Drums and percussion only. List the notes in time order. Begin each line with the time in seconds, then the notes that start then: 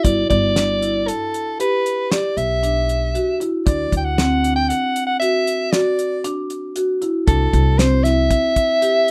0.05 kick, closed hi-hat
0.30 kick, closed hi-hat
0.56 snare, closed hi-hat
0.82 closed hi-hat
1.08 closed hi-hat
1.34 closed hi-hat
1.60 closed hi-hat
1.86 closed hi-hat
2.12 snare, closed hi-hat
2.37 closed hi-hat
2.63 closed hi-hat
2.89 closed hi-hat
3.15 closed hi-hat
3.41 closed hi-hat
3.67 kick, closed hi-hat
3.92 kick, closed hi-hat
4.18 snare, closed hi-hat
4.44 closed hi-hat
4.70 closed hi-hat
4.96 closed hi-hat
5.22 closed hi-hat
5.47 closed hi-hat
5.73 snare, closed hi-hat
5.99 closed hi-hat
6.24 closed hi-hat
6.50 closed hi-hat
6.76 closed hi-hat
7.02 closed hi-hat
7.27 kick, closed hi-hat
7.53 kick, closed hi-hat
7.79 snare, closed hi-hat
8.05 snare, closed hi-hat
8.31 kick, closed hi-hat
8.56 kick, closed hi-hat
8.82 closed hi-hat